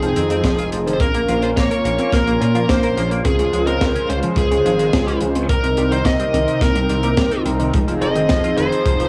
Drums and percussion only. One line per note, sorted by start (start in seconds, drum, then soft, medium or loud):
0.03 closed hi-hat medium
0.16 closed hi-hat medium
0.30 closed hi-hat medium
0.44 kick loud
0.44 snare loud
0.44 closed hi-hat loud
0.59 closed hi-hat medium
0.72 closed hi-hat medium
0.87 closed hi-hat medium
1.00 kick loud
1.00 closed hi-hat loud
1.14 closed hi-hat medium
1.28 closed hi-hat medium
1.42 closed hi-hat medium
1.57 kick loud
1.57 snare loud
1.57 closed hi-hat loud
1.71 closed hi-hat medium
1.85 closed hi-hat medium
1.98 closed hi-hat medium
2.12 kick loud
2.12 snare medium
2.12 closed hi-hat loud
2.27 closed hi-hat medium
2.41 closed hi-hat medium
2.55 closed hi-hat medium
2.69 kick loud
2.69 snare loud
2.69 closed hi-hat loud
2.83 closed hi-hat medium
2.97 closed hi-hat medium
3.11 closed hi-hat medium
3.25 kick loud
3.25 closed hi-hat loud
3.39 closed hi-hat medium
3.53 closed hi-hat medium
3.67 closed hi-hat medium
3.81 kick loud
3.81 snare loud
3.81 closed hi-hat medium
3.96 closed hi-hat medium
4.10 closed hi-hat medium
4.23 closed hi-hat medium
4.36 kick loud
4.36 closed hi-hat loud
4.52 closed hi-hat medium
4.66 closed hi-hat medium
4.79 closed hi-hat medium
4.93 kick loud
4.93 snare loud
4.93 closed hi-hat medium
5.08 closed hi-hat medium
5.21 closed hi-hat medium
5.35 closed hi-hat medium
5.49 kick loud
5.49 closed hi-hat loud
5.64 closed hi-hat medium
5.77 closed hi-hat medium
5.92 closed hi-hat medium
6.05 kick loud
6.05 snare loud
6.05 closed hi-hat loud
6.20 closed hi-hat medium
6.34 closed hi-hat medium
6.48 closed hi-hat medium
6.61 kick loud
6.61 snare medium
6.61 closed hi-hat loud
6.75 closed hi-hat medium
6.89 closed hi-hat medium
7.03 closed hi-hat medium
7.17 kick loud
7.17 snare loud
7.17 closed hi-hat loud
7.31 closed hi-hat medium
7.46 closed hi-hat medium
7.60 closed hi-hat medium
7.74 kick loud
7.74 closed hi-hat medium
7.88 closed hi-hat medium
8.01 closed hi-hat medium
8.15 closed hi-hat medium
8.29 kick loud
8.29 snare loud
8.29 closed hi-hat loud
8.44 closed hi-hat medium
8.58 closed hi-hat medium
8.72 closed hi-hat medium
8.86 kick loud
8.86 closed hi-hat loud
9.00 closed hi-hat medium